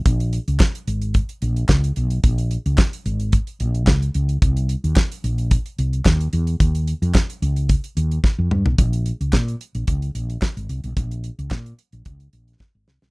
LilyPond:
<<
  \new Staff \with { instrumentName = "Fretless electric bass" } { \clef bass \time 4/4 \key ees \mixolydian \tempo 4 = 110 bes,,8. des,16 r8 aes,,8. r16 bes,,8 des,8 ces,8 | bes,,8. des,16 r8 aes,,8. r16 bes,,8 des,8 des,8 | c,8. ees,16 r8 bes,,8. r16 c,8 ees,8 e,8 | ees,8. f,16 r8 des,8. r16 ees,8 r16 f,16 g,16 ces,16 |
bes,,8. des,16 bes,8 r16 bes,,16 des,8 bes,,8 r16 aes,,16 c,16 ces,16 | bes,,8. des,16 bes,8 r16 bes,,16 des,8 bes,,8 r16 aes,,16 c,16 ces,16 | }
  \new DrumStaff \with { instrumentName = "Drums" } \drummode { \time 4/4 <hh bd>16 hh16 hh16 hh16 <hc bd sn>16 hh16 hh16 hh16 <hh bd>16 hh16 hh16 hh16 <hc bd sn>16 hh16 hh16 hh16 | <hh bd>16 hh16 hh16 hh16 <hc bd sn>16 hh16 hh16 hh16 <hh bd>16 hh16 hh16 hh16 <hc bd sn>16 hh16 hh16 hh16 | <hh bd>16 hh16 hh16 hh16 <hc bd sn>16 hh16 hh16 hh16 <hh bd>16 hh16 hh16 hh16 <hc bd sn>16 hh16 hh16 hh16 | <hh bd>16 hh16 hh16 hh16 <hc bd sn>16 hh16 hh16 hh16 <hh bd>16 hh16 hh16 hh16 <bd sn>8 toml16 tomfh16 |
<hh bd>16 hh16 hh16 hh16 <hc bd sn>16 hh16 hh16 hh16 <hh bd>16 hh16 hh16 hh16 <hc bd sn>16 hh16 hh16 hh16 | <hh bd>16 hh16 hh16 hh16 <hc bd sn>16 hh16 hh16 hh16 <hh bd>16 hh16 hh16 hh16 <bd sn>8 sn16 sn16 | }
>>